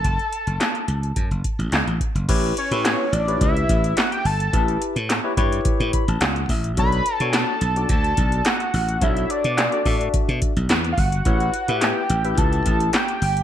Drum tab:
CC |----------------|x---------------|----------------|----------------|
HH |xxxxxxxxxxxxxxxx|xxxxx-xxxxxxxxox|xxxxx-xxxxxxxxox|xxxxx-xxxxxxxxox|
CP |----x-------x---|----x-------x---|----x-------x---|----x-------x---|
SD |----o-------o---|----o-------o---|----o-------o---|----o-------o---|
BD |o-------o-o---o-|o-------o-o-----|o-----o-o-o---o-|o-------o-o-----|

CC |----------------|----------------|
HH |xxxxxxoxxxxxxxox|xxxxx-xxxxxxxxox|
CP |----x-------x---|----x-------x---|
SD |----o-------o---|----o-------o---|
BD |o-----o-o-o---o-|o-------o-o-----|